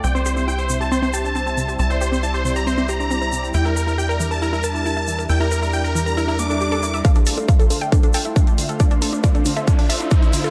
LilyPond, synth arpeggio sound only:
\new Staff \with { instrumentName = "Synth arpeggio sound" } { \time 4/4 \key d \minor \tempo 4 = 137 c'16 c'16 g'16 c'16 e'16 g'16 c16 g'16 c'16 c'16 g'16 d'16 c'16 c'16 c16 g'16 | c'16 c'16 g'16 c'16 e'16 g'16 c16 g'16 c'16 c'16 g'16 d'16 c'16 c'16 c16 g'16 | e'16 e'16 bes'16 e'16 g'16 bes'16 e16 bes'16 e'16 e'16 bes'16 e'16 e'16 e'16 e16 bes'16 | e'16 e'16 bes'16 e'16 g'16 bes'16 e16 bes'16 e'16 e'16 bes16 a'16 g'16 a'16 e'16 e''16 |
d'16 d'16 a'16 d'16 f'16 a'16 d16 a'16 d'16 d'16 a'16 e'16 d'16 d'16 d16 a'16 | d'16 d'16 a'16 d'16 f'16 a'16 d16 a'16 d'16 d'16 a'16 e'16 d'16 d'16 d16 a'16 | }